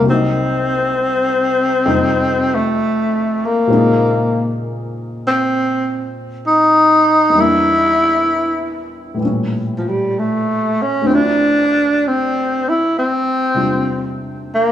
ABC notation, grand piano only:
X:1
M:4/4
L:1/8
Q:"Swing" 1/4=65
K:Bblyd
V:1 name="Grand piano" clef=bass
[C,,C,_G,B,_E]4 [F,,C,=G,EA]4 | [B,,_D,F,_A,C_E]8 | [E,,E,G,B,D]4 [A,,B,,E,G,^C]4 | [D,,D,F,CE]4- [D,,D,F,CE] [C,G,DF]3 |]